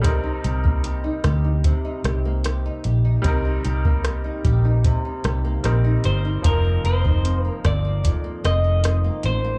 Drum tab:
HH |x-x-x-x-x-x-x-x-|x-x-x-x-x-x-x-x-|x-x-x-x-x-x-x-x-|
SD |------r---r-r---|----r-----r-r---|------r---r-r---|
BD |o--o--o-o-------|o--o--o-o-------|o--o--o-o-------|